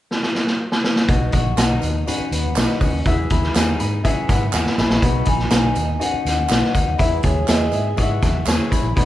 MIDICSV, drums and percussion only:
0, 0, Header, 1, 2, 480
1, 0, Start_track
1, 0, Key_signature, 5, "major"
1, 0, Tempo, 492207
1, 1061, Time_signature, 4, 2, 24, 8
1, 8827, End_track
2, 0, Start_track
2, 0, Title_t, "Drums"
2, 106, Note_on_c, 9, 38, 51
2, 204, Note_off_c, 9, 38, 0
2, 223, Note_on_c, 9, 38, 58
2, 320, Note_off_c, 9, 38, 0
2, 340, Note_on_c, 9, 38, 64
2, 438, Note_off_c, 9, 38, 0
2, 458, Note_on_c, 9, 38, 56
2, 556, Note_off_c, 9, 38, 0
2, 700, Note_on_c, 9, 38, 78
2, 798, Note_off_c, 9, 38, 0
2, 821, Note_on_c, 9, 38, 86
2, 918, Note_off_c, 9, 38, 0
2, 935, Note_on_c, 9, 38, 79
2, 1033, Note_off_c, 9, 38, 0
2, 1058, Note_on_c, 9, 42, 67
2, 1059, Note_on_c, 9, 36, 96
2, 1155, Note_off_c, 9, 42, 0
2, 1157, Note_off_c, 9, 36, 0
2, 1289, Note_on_c, 9, 42, 74
2, 1300, Note_on_c, 9, 36, 80
2, 1305, Note_on_c, 9, 54, 37
2, 1313, Note_on_c, 9, 63, 71
2, 1387, Note_off_c, 9, 42, 0
2, 1397, Note_off_c, 9, 36, 0
2, 1402, Note_off_c, 9, 54, 0
2, 1411, Note_off_c, 9, 63, 0
2, 1538, Note_on_c, 9, 42, 106
2, 1540, Note_on_c, 9, 38, 106
2, 1543, Note_on_c, 9, 39, 88
2, 1543, Note_on_c, 9, 54, 83
2, 1636, Note_off_c, 9, 42, 0
2, 1638, Note_off_c, 9, 38, 0
2, 1640, Note_off_c, 9, 39, 0
2, 1640, Note_off_c, 9, 54, 0
2, 1669, Note_on_c, 9, 62, 25
2, 1669, Note_on_c, 9, 63, 55
2, 1767, Note_off_c, 9, 62, 0
2, 1767, Note_off_c, 9, 63, 0
2, 1772, Note_on_c, 9, 54, 52
2, 1784, Note_on_c, 9, 42, 62
2, 1784, Note_on_c, 9, 64, 47
2, 1869, Note_off_c, 9, 54, 0
2, 1881, Note_off_c, 9, 64, 0
2, 1882, Note_off_c, 9, 42, 0
2, 2023, Note_on_c, 9, 54, 59
2, 2028, Note_on_c, 9, 42, 68
2, 2035, Note_on_c, 9, 62, 29
2, 2035, Note_on_c, 9, 64, 60
2, 2120, Note_off_c, 9, 54, 0
2, 2126, Note_off_c, 9, 42, 0
2, 2132, Note_off_c, 9, 62, 0
2, 2132, Note_off_c, 9, 64, 0
2, 2264, Note_on_c, 9, 42, 69
2, 2267, Note_on_c, 9, 54, 52
2, 2362, Note_off_c, 9, 42, 0
2, 2365, Note_off_c, 9, 54, 0
2, 2398, Note_on_c, 9, 63, 67
2, 2496, Note_off_c, 9, 63, 0
2, 2498, Note_on_c, 9, 39, 102
2, 2498, Note_on_c, 9, 54, 110
2, 2507, Note_on_c, 9, 42, 78
2, 2509, Note_on_c, 9, 38, 98
2, 2596, Note_off_c, 9, 39, 0
2, 2596, Note_off_c, 9, 54, 0
2, 2604, Note_off_c, 9, 42, 0
2, 2607, Note_off_c, 9, 38, 0
2, 2625, Note_on_c, 9, 38, 36
2, 2635, Note_on_c, 9, 63, 62
2, 2722, Note_off_c, 9, 38, 0
2, 2732, Note_off_c, 9, 63, 0
2, 2738, Note_on_c, 9, 46, 51
2, 2740, Note_on_c, 9, 36, 75
2, 2740, Note_on_c, 9, 54, 62
2, 2836, Note_off_c, 9, 46, 0
2, 2837, Note_off_c, 9, 36, 0
2, 2837, Note_off_c, 9, 54, 0
2, 2979, Note_on_c, 9, 42, 69
2, 2980, Note_on_c, 9, 54, 28
2, 2981, Note_on_c, 9, 36, 91
2, 3076, Note_off_c, 9, 42, 0
2, 3077, Note_off_c, 9, 54, 0
2, 3079, Note_off_c, 9, 36, 0
2, 3217, Note_on_c, 9, 42, 67
2, 3224, Note_on_c, 9, 36, 79
2, 3234, Note_on_c, 9, 63, 63
2, 3315, Note_off_c, 9, 42, 0
2, 3322, Note_off_c, 9, 36, 0
2, 3331, Note_off_c, 9, 63, 0
2, 3347, Note_on_c, 9, 38, 32
2, 3444, Note_off_c, 9, 38, 0
2, 3465, Note_on_c, 9, 42, 107
2, 3467, Note_on_c, 9, 38, 111
2, 3468, Note_on_c, 9, 39, 86
2, 3468, Note_on_c, 9, 54, 94
2, 3481, Note_on_c, 9, 62, 28
2, 3562, Note_off_c, 9, 42, 0
2, 3565, Note_off_c, 9, 38, 0
2, 3566, Note_off_c, 9, 39, 0
2, 3566, Note_off_c, 9, 54, 0
2, 3579, Note_off_c, 9, 62, 0
2, 3598, Note_on_c, 9, 62, 23
2, 3598, Note_on_c, 9, 63, 55
2, 3696, Note_off_c, 9, 62, 0
2, 3696, Note_off_c, 9, 63, 0
2, 3703, Note_on_c, 9, 42, 63
2, 3703, Note_on_c, 9, 54, 49
2, 3711, Note_on_c, 9, 64, 54
2, 3800, Note_off_c, 9, 54, 0
2, 3801, Note_off_c, 9, 42, 0
2, 3808, Note_off_c, 9, 64, 0
2, 3946, Note_on_c, 9, 62, 30
2, 3946, Note_on_c, 9, 64, 63
2, 3947, Note_on_c, 9, 36, 70
2, 3947, Note_on_c, 9, 54, 55
2, 3948, Note_on_c, 9, 42, 69
2, 4043, Note_off_c, 9, 62, 0
2, 4043, Note_off_c, 9, 64, 0
2, 4045, Note_off_c, 9, 36, 0
2, 4045, Note_off_c, 9, 54, 0
2, 4046, Note_off_c, 9, 42, 0
2, 4183, Note_on_c, 9, 42, 69
2, 4184, Note_on_c, 9, 38, 34
2, 4185, Note_on_c, 9, 36, 87
2, 4200, Note_on_c, 9, 54, 54
2, 4281, Note_off_c, 9, 42, 0
2, 4282, Note_off_c, 9, 36, 0
2, 4282, Note_off_c, 9, 38, 0
2, 4297, Note_off_c, 9, 54, 0
2, 4299, Note_on_c, 9, 63, 64
2, 4396, Note_off_c, 9, 63, 0
2, 4419, Note_on_c, 9, 62, 28
2, 4420, Note_on_c, 9, 39, 110
2, 4420, Note_on_c, 9, 54, 107
2, 4424, Note_on_c, 9, 38, 50
2, 4517, Note_off_c, 9, 39, 0
2, 4517, Note_off_c, 9, 54, 0
2, 4517, Note_off_c, 9, 62, 0
2, 4522, Note_off_c, 9, 38, 0
2, 4537, Note_on_c, 9, 63, 65
2, 4547, Note_on_c, 9, 38, 58
2, 4635, Note_off_c, 9, 63, 0
2, 4644, Note_off_c, 9, 38, 0
2, 4660, Note_on_c, 9, 38, 76
2, 4666, Note_on_c, 9, 54, 61
2, 4758, Note_off_c, 9, 38, 0
2, 4764, Note_off_c, 9, 54, 0
2, 4779, Note_on_c, 9, 38, 83
2, 4877, Note_off_c, 9, 38, 0
2, 4899, Note_on_c, 9, 36, 85
2, 4901, Note_on_c, 9, 42, 72
2, 4903, Note_on_c, 9, 54, 27
2, 4997, Note_off_c, 9, 36, 0
2, 4998, Note_off_c, 9, 42, 0
2, 5001, Note_off_c, 9, 54, 0
2, 5018, Note_on_c, 9, 62, 30
2, 5115, Note_off_c, 9, 62, 0
2, 5123, Note_on_c, 9, 42, 67
2, 5137, Note_on_c, 9, 36, 70
2, 5147, Note_on_c, 9, 63, 67
2, 5220, Note_off_c, 9, 42, 0
2, 5235, Note_off_c, 9, 36, 0
2, 5244, Note_off_c, 9, 63, 0
2, 5256, Note_on_c, 9, 38, 30
2, 5353, Note_off_c, 9, 38, 0
2, 5372, Note_on_c, 9, 42, 100
2, 5374, Note_on_c, 9, 38, 114
2, 5381, Note_on_c, 9, 39, 89
2, 5381, Note_on_c, 9, 54, 88
2, 5390, Note_on_c, 9, 62, 29
2, 5470, Note_off_c, 9, 42, 0
2, 5472, Note_off_c, 9, 38, 0
2, 5478, Note_off_c, 9, 39, 0
2, 5478, Note_off_c, 9, 54, 0
2, 5488, Note_off_c, 9, 62, 0
2, 5502, Note_on_c, 9, 62, 24
2, 5502, Note_on_c, 9, 63, 53
2, 5600, Note_off_c, 9, 62, 0
2, 5600, Note_off_c, 9, 63, 0
2, 5610, Note_on_c, 9, 54, 51
2, 5611, Note_on_c, 9, 64, 48
2, 5614, Note_on_c, 9, 42, 58
2, 5708, Note_off_c, 9, 54, 0
2, 5709, Note_off_c, 9, 64, 0
2, 5711, Note_off_c, 9, 42, 0
2, 5860, Note_on_c, 9, 62, 30
2, 5860, Note_on_c, 9, 64, 58
2, 5862, Note_on_c, 9, 42, 72
2, 5862, Note_on_c, 9, 54, 53
2, 5958, Note_off_c, 9, 62, 0
2, 5958, Note_off_c, 9, 64, 0
2, 5959, Note_off_c, 9, 42, 0
2, 5959, Note_off_c, 9, 54, 0
2, 5984, Note_on_c, 9, 62, 33
2, 6081, Note_off_c, 9, 62, 0
2, 6108, Note_on_c, 9, 54, 54
2, 6109, Note_on_c, 9, 42, 72
2, 6110, Note_on_c, 9, 38, 32
2, 6205, Note_off_c, 9, 54, 0
2, 6206, Note_off_c, 9, 42, 0
2, 6208, Note_off_c, 9, 38, 0
2, 6221, Note_on_c, 9, 63, 60
2, 6319, Note_off_c, 9, 63, 0
2, 6334, Note_on_c, 9, 39, 106
2, 6334, Note_on_c, 9, 54, 103
2, 6350, Note_on_c, 9, 42, 74
2, 6353, Note_on_c, 9, 38, 97
2, 6431, Note_off_c, 9, 39, 0
2, 6431, Note_off_c, 9, 54, 0
2, 6447, Note_off_c, 9, 42, 0
2, 6450, Note_off_c, 9, 38, 0
2, 6457, Note_on_c, 9, 63, 61
2, 6476, Note_on_c, 9, 38, 35
2, 6555, Note_off_c, 9, 63, 0
2, 6573, Note_off_c, 9, 38, 0
2, 6580, Note_on_c, 9, 36, 82
2, 6582, Note_on_c, 9, 54, 60
2, 6584, Note_on_c, 9, 42, 67
2, 6677, Note_off_c, 9, 36, 0
2, 6679, Note_off_c, 9, 54, 0
2, 6681, Note_off_c, 9, 42, 0
2, 6811, Note_on_c, 9, 54, 27
2, 6820, Note_on_c, 9, 36, 87
2, 6821, Note_on_c, 9, 42, 76
2, 6909, Note_off_c, 9, 54, 0
2, 6918, Note_off_c, 9, 36, 0
2, 6918, Note_off_c, 9, 42, 0
2, 7049, Note_on_c, 9, 42, 63
2, 7049, Note_on_c, 9, 54, 35
2, 7052, Note_on_c, 9, 63, 62
2, 7059, Note_on_c, 9, 36, 81
2, 7146, Note_off_c, 9, 42, 0
2, 7146, Note_off_c, 9, 54, 0
2, 7149, Note_off_c, 9, 63, 0
2, 7156, Note_off_c, 9, 36, 0
2, 7295, Note_on_c, 9, 39, 81
2, 7295, Note_on_c, 9, 54, 89
2, 7296, Note_on_c, 9, 42, 109
2, 7299, Note_on_c, 9, 38, 113
2, 7393, Note_off_c, 9, 39, 0
2, 7393, Note_off_c, 9, 54, 0
2, 7394, Note_off_c, 9, 42, 0
2, 7396, Note_off_c, 9, 38, 0
2, 7415, Note_on_c, 9, 62, 23
2, 7415, Note_on_c, 9, 63, 54
2, 7512, Note_off_c, 9, 62, 0
2, 7512, Note_off_c, 9, 63, 0
2, 7525, Note_on_c, 9, 54, 50
2, 7530, Note_on_c, 9, 64, 50
2, 7537, Note_on_c, 9, 42, 58
2, 7622, Note_off_c, 9, 54, 0
2, 7627, Note_off_c, 9, 64, 0
2, 7635, Note_off_c, 9, 42, 0
2, 7770, Note_on_c, 9, 64, 63
2, 7774, Note_on_c, 9, 54, 55
2, 7783, Note_on_c, 9, 36, 67
2, 7785, Note_on_c, 9, 42, 66
2, 7867, Note_off_c, 9, 64, 0
2, 7872, Note_off_c, 9, 54, 0
2, 7881, Note_off_c, 9, 36, 0
2, 7883, Note_off_c, 9, 42, 0
2, 8020, Note_on_c, 9, 54, 56
2, 8022, Note_on_c, 9, 36, 80
2, 8024, Note_on_c, 9, 42, 61
2, 8025, Note_on_c, 9, 38, 32
2, 8118, Note_off_c, 9, 54, 0
2, 8119, Note_off_c, 9, 36, 0
2, 8122, Note_off_c, 9, 42, 0
2, 8123, Note_off_c, 9, 38, 0
2, 8128, Note_on_c, 9, 63, 63
2, 8226, Note_off_c, 9, 63, 0
2, 8251, Note_on_c, 9, 62, 26
2, 8255, Note_on_c, 9, 39, 98
2, 8255, Note_on_c, 9, 54, 106
2, 8269, Note_on_c, 9, 42, 69
2, 8272, Note_on_c, 9, 38, 94
2, 8349, Note_off_c, 9, 62, 0
2, 8352, Note_off_c, 9, 39, 0
2, 8352, Note_off_c, 9, 54, 0
2, 8366, Note_off_c, 9, 42, 0
2, 8369, Note_off_c, 9, 38, 0
2, 8378, Note_on_c, 9, 62, 29
2, 8378, Note_on_c, 9, 63, 64
2, 8476, Note_off_c, 9, 62, 0
2, 8476, Note_off_c, 9, 63, 0
2, 8502, Note_on_c, 9, 36, 71
2, 8506, Note_on_c, 9, 42, 69
2, 8508, Note_on_c, 9, 54, 65
2, 8600, Note_off_c, 9, 36, 0
2, 8604, Note_off_c, 9, 42, 0
2, 8606, Note_off_c, 9, 54, 0
2, 8740, Note_on_c, 9, 54, 27
2, 8745, Note_on_c, 9, 36, 91
2, 8747, Note_on_c, 9, 42, 77
2, 8827, Note_off_c, 9, 36, 0
2, 8827, Note_off_c, 9, 42, 0
2, 8827, Note_off_c, 9, 54, 0
2, 8827, End_track
0, 0, End_of_file